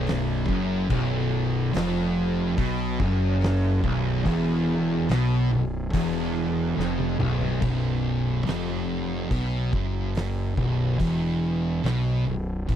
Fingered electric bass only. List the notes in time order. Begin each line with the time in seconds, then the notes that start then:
Already playing: B0
0.49 F#1
1.75 F1
2.58 B1
3.00 F#1
3.84 B0
4.26 E1
5.09 B1
5.52 B0
5.93 E1
6.78 F1
7.19 B0
7.62 B0
8.46 F1
9.31 B1
9.73 F#1
10.57 B0
11.00 E1
11.84 B1
12.26 B0
12.69 A1